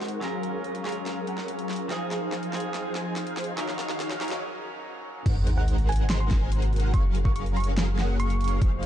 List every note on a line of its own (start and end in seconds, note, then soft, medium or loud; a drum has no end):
0.00 0.19 G#3 medium
0.00 0.20 G#3 medium
0.00 0.21 G#3 medium
0.00 0.20 C4 medium
0.00 0.21 C4 medium
0.00 0.20 D#4 medium
0.00 0.20 F#4 medium
0.00 0.21 F#4 medium
0.00 0.20 A#4 medium
0.00 0.21 A#4 medium
0.00 1.87 A#4 medium
0.00 0.20 C5 medium
0.00 0.20 F#5 medium
0.00 snare medium
0.00 closed hi-hat soft
0.05 closed hi-hat medium
0.08 closed hi-hat medium
0.20 0.82 F#3 medium
0.20 1.25 F#3 medium
0.20 1.89 F#3 medium
0.20 0.82 C#4 medium
0.20 1.25 C#4 medium
0.20 1.89 F4 medium
0.20 0.83 F4 medium
0.20 1.25 G#4 medium
0.20 1.25 A#4 medium
0.20 0.84 A#4 loud
0.20 1.25 F5 loud
0.20 snare medium
0.20 closed hi-hat medium
0.43 closed hi-hat medium
0.64 closed hi-hat medium
0.75 closed hi-hat medium
0.83 1.87 F#3 medium
0.83 1.87 C#4 medium
0.83 1.88 F4 medium
0.83 snare medium
0.83 closed hi-hat medium
0.87 1.89 A#4 medium
0.87 closed hi-hat medium
0.92 closed hi-hat medium
1.06 snare medium
1.06 closed hi-hat medium
1.27 1.46 F#3 medium
1.27 1.46 C#4 medium
1.27 1.46 G#4 medium
1.27 1.46 A#4 medium
1.27 1.46 F#5 loud
1.27 closed hi-hat medium
1.38 snare medium
1.48 1.88 F#3 medium
1.48 1.88 C#4 medium
1.48 1.88 G#4 medium
1.48 1.88 A#4 medium
1.48 1.88 F5 medium
1.48 closed hi-hat medium
1.59 closed hi-hat medium
1.69 snare medium
1.69 closed hi-hat medium
1.73 closed hi-hat medium
1.76 closed hi-hat medium
1.88 2.50 F3 medium
1.88 2.93 F3 loud
1.88 3.56 F3 medium
1.88 2.50 C4 medium
1.88 3.56 D#4 medium
1.88 2.93 D#4 medium
1.88 2.51 D#4 medium
1.88 3.56 G#4 medium
1.88 2.93 G#4 medium
1.88 2.93 C5 medium
1.88 2.93 F5 loud
1.88 snare medium
1.88 closed hi-hat medium
1.92 2.52 G#4 loud
2.11 snare medium
2.11 closed hi-hat medium
2.32 snare medium
2.32 closed hi-hat medium
2.43 closed hi-hat medium
2.51 3.54 F3 medium
2.51 3.55 C4 medium
2.51 3.56 D#4 medium
2.51 snare medium
2.51 closed hi-hat medium
2.55 3.57 G#4 medium
2.55 closed hi-hat medium
2.60 closed hi-hat medium
2.74 snare medium
2.74 closed hi-hat medium
2.95 3.14 F3 medium
2.95 3.14 D#4 medium
2.95 3.14 G#4 medium
2.95 3.14 C5 medium
2.95 3.14 G#5 loud
2.95 snare medium
2.95 closed hi-hat medium
3.16 3.56 F3 medium
3.16 3.56 D#4 medium
3.16 3.56 G#4 medium
3.16 3.56 C5 medium
3.16 3.56 F5 medium
3.16 snare medium
3.16 closed hi-hat medium
3.27 closed hi-hat medium
3.37 snare medium
3.37 closed hi-hat soft
3.41 closed hi-hat medium
3.44 closed hi-hat medium
3.56 4.42 D#3 loud
3.56 4.18 F#3 medium
3.56 4.18 C#4 medium
3.56 4.42 D#4 medium
3.56 4.19 D#4 medium
3.56 4.42 F#4 medium
3.56 4.20 A#4 loud
3.56 4.42 C#5 medium
3.56 4.42 F5 loud
3.56 snare loud
3.56 closed hi-hat medium
3.69 snare medium
3.79 snare medium
3.79 closed hi-hat medium
3.90 snare medium
4.00 snare loud
4.00 closed hi-hat medium
4.11 snare medium
4.11 closed hi-hat medium
4.19 5.22 F#3 medium
4.19 5.23 C#4 medium
4.19 5.24 D#4 medium
4.19 5.24 A#4 medium
4.19 snare loud
4.19 closed hi-hat soft
4.24 closed hi-hat medium
4.28 snare medium
4.28 closed hi-hat medium
5.26 6.92 G#1 medium
5.26 6.92 C3 medium
5.26 6.28 G#3 loud
5.26 6.92 A#3 medium
5.26 6.28 D#4 medium
5.26 8.58 F#4 medium
5.26 6.28 A#4 medium
5.26 6.28 C5 medium
5.26 6.28 F#5 loud
5.26 kick loud
5.26 closed hi-hat medium
5.26 crash loud
5.26 sub drop medium
5.47 closed hi-hat medium
5.58 5.68 F#5 medium
5.68 closed hi-hat medium
5.78 closed hi-hat medium
5.89 6.08 G#5 medium
5.89 closed hi-hat medium
5.92 closed hi-hat medium
5.96 closed hi-hat medium
6.10 6.17 C6 medium
6.10 snare loud
6.10 closed hi-hat medium
6.20 6.27 C6 medium
6.31 6.49 G#3 medium
6.31 6.49 D#4 medium
6.31 6.49 A#4 medium
6.31 6.49 C5 medium
6.31 6.49 G#5 loud
6.31 kick loud
6.31 snare medium
6.31 closed hi-hat medium
6.52 6.91 G#3 medium
6.52 6.91 D#4 medium
6.52 6.91 A#4 medium
6.52 6.91 C5 medium
6.52 6.91 F#5 medium
6.52 closed hi-hat medium
6.62 closed hi-hat medium
6.73 closed hi-hat medium
6.76 closed hi-hat medium
6.80 closed hi-hat medium
6.94 8.59 F#1 medium
6.94 7.96 F#3 loud
6.94 8.60 A#3 medium
6.94 7.96 C#4 medium
6.94 7.96 G#4 medium
6.94 7.96 A#4 medium
6.94 7.96 F5 loud
6.94 7.04 C#6 medium
6.94 kick loud
6.94 closed hi-hat medium
7.15 closed hi-hat medium
7.25 7.32 C#6 medium
7.25 kick loud
7.36 7.42 C#6 medium
7.36 closed hi-hat medium
7.46 closed hi-hat medium
7.57 7.67 C#6 medium
7.57 closed hi-hat medium
7.60 closed hi-hat medium
7.64 closed hi-hat medium
7.78 snare loud
7.78 closed hi-hat medium
7.99 8.17 F#3 medium
7.99 8.17 C#4 medium
7.99 8.17 G#4 medium
7.99 8.17 A#4 medium
7.99 8.17 F#5 loud
7.99 snare medium
7.99 closed hi-hat medium
8.20 8.59 F#3 medium
8.20 8.59 C#4 medium
8.20 8.59 G#4 medium
8.20 8.59 A#4 medium
8.20 8.59 F5 medium
8.20 8.66 C#6 loud
8.20 closed hi-hat medium
8.30 closed hi-hat medium
8.41 closed hi-hat soft
8.44 closed hi-hat medium
8.48 closed hi-hat medium
8.62 8.86 F1 medium
8.62 8.86 F3 loud
8.62 8.86 D#4 medium
8.62 8.86 G#4 medium
8.62 8.86 C5 medium
8.62 8.86 F5 loud
8.62 kick loud
8.62 closed hi-hat medium
8.83 closed hi-hat medium